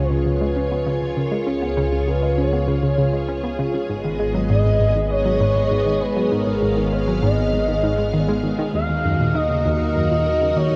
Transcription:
Already playing: C#2 F4 G#4 C#5
0.09 C#3 B4
0.26 C#3 B4
0.41 G#3
0.56 C#4
0.71 B3
0.86 C#3
1.02 C#3
1.17 C#3 A#4
1.32 G#3
1.47 C#2 C#4 G#4
1.62 B3
1.77 C#3
1.92 C#3
2.07 C#3 B4
2.22 G#3
2.38 C#4 C#5
2.53 B3
2.68 C#3
2.83 C#3
2.98 C#3
3.13 G#3
3.29 C#4
3.44 B3
3.59 C#3
3.74 C#3
3.89 G#1 G#2 G#3 B3 D#5
4.04 D#3
4.19 G#3
4.35 F#3
4.50 G#2 D#5
4.65 G#2
4.80 G#2
4.96 D#3
5.11 G#3 C#5
5.26 F#3
5.41 G#2
5.56 G#2
5.71 G#2
5.86 D#3
6.01 G#3 B4
6.16 F#3
6.32 G#2 A#4 F5
6.47 G#2
6.62 G#2
6.77 D#3
6.93 G#3 C#5
7.08 F#3
7.23 G#2 D#5
7.38 G#2
7.53 G#2
7.68 D#3
7.83 G#2
7.98 G#3
8.14 D#3
8.29 G#3
8.44 D#3
8.59 D#3
8.74 D#2 D#4 F#4 A#4 F5
8.89 D#2
9.04 F#2
9.20 A#2
9.35 D#3 D#5
9.50 C#3
9.65 D#2
9.80 D#2
9.95 F#2 D#5
10.11 A#2
10.26 D#3
10.41 C#3
10.56 D#2 C#5
10.71 D#2

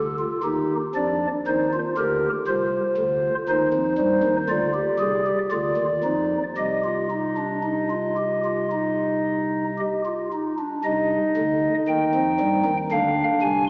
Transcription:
Already playing: D2 D3 A4
0.19 F4
0.43 D#2 D#3 D#4 G4
0.95 F2 F3 D4 D5
1.47 D#2 D#3 D#4 C5
1.74 F4
1.98 D2 D3 G4 A#4
2.47 C2 C3 F4 C5
2.97 D2 D3
3.49 D#2 D#3 D#4 C5
3.74 F2 F3
3.98 G2 G3
4.23 D#2 D#3
4.49 D2 D3 F4 D5
4.74 G4
4.99 C2 C3 G#4
5.27 G4
5.51 D2 D3 F4 D5
5.77 D#2 D#3
6.04 F2 F3 D#4
6.58 C2 C3 G4 D#5
6.84 F4
7.11 D#4
7.38 D4
7.63 D#4
7.90 F4
8.17 G4
8.45 F4
8.72 D#4
9.79 G4
10.06 F4
10.33 D#4
10.59 D4
10.84 C2 C3 D#4 D#5
11.37 D2 D3
11.88 D#2 D#3 G5
12.15 F2 F3
12.40 G2 G3
12.65 D#2 D#3
12.92 D2 D3 D4 F5
13.42 C2 C3 G#5

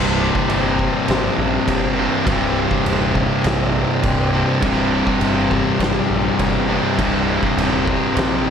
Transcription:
Already playing: C1 C2 G2 C3 G3 C4
0.35 kick
0.48 G1, crash
0.79 kick
1.08 G#1, snare, crash
1.37 A#1
1.68 G1, kick, crash
1.96 G2 C3
2.00 C2
2.26 C1 C2 G2, kick, crash
2.30 C3
2.71 kick
2.86 D#1, crash
3.15 kick
3.44 A#1, snare, crash
4.03 C1, kick, crash
4.33 C2 G2 C3
4.61 C1 C2 G2 C3, kick, crash
5.07 kick
5.20 G1, crash
5.51 kick
5.79 G#1, snare, crash
6.09 A#1
6.39 G1, kick, crash
6.68 C2 G2 C3
6.97 C1 C2 G2 C3, kick, crash
7.43 kick
7.56 D#1, crash
7.87 kick
8.16 A#1, snare, crash

